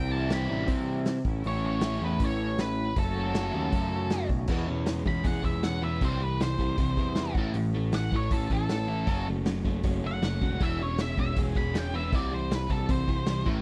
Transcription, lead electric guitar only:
0.00 0.13 G5 loud
0.11 0.31 A5 medium
0.33 0.67 B5 medium
1.47 1.65 C#5 loud
1.66 2.01 C#5 loud
2.04 2.21 B4 medium
2.25 2.60 C#5 loud
2.61 2.95 B4 medium
2.99 4.28 A4 medium
5.08 5.26 B5 medium
5.27 5.45 F#5 medium
5.45 5.64 E5 medium
5.64 5.82 F#5 medium
5.84 6.02 E5 medium
6.05 6.23 C5 medium
6.23 6.41 B4 medium
6.42 7.34 C5 medium
7.95 8.13 F#5 medium
8.16 8.33 C#5 medium
8.32 8.50 A4 medium
8.53 9.26 A4 medium
10.07 10.61 F#5 medium
10.63 10.83 E5 loud
10.83 11.01 C#5 medium
11.01 11.18 E5 medium
11.20 11.38 E5 medium
11.57 11.75 B5 medium
11.78 11.95 G5 medium
11.96 12.15 E5 medium
12.15 12.33 D5 loud
12.34 12.55 C5 medium
12.55 12.72 B4 medium
12.71 12.90 A4 medium
12.91 13.46 C5 loud

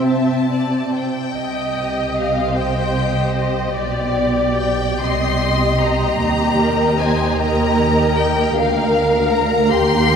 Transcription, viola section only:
0.00 0.93 C4 soft
1.35 2.51 D#5 soft
2.55 3.75 C5 soft
3.76 5.01 D5 medium
5.03 6.22 D#5 medium
6.23 6.61 G4 medium
6.61 7.01 A#4 soft
7.00 7.40 C5 soft
7.39 8.56 A#4 medium
8.57 9.69 A#4 medium
9.71 10.16 G4 medium

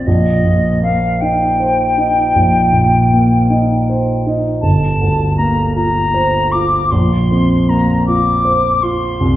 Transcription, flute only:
0.06 0.82 D#5 medium
0.83 1.22 F5 medium
1.20 4.26 G5 medium
4.61 5.33 A5 medium
5.37 5.75 A#5 medium
5.75 6.53 A#5 medium
6.51 6.92 D6 medium
6.91 7.70 C6 medium
7.69 8.06 A#5 medium
8.06 8.84 D6 medium
8.82 9.37 C6 medium

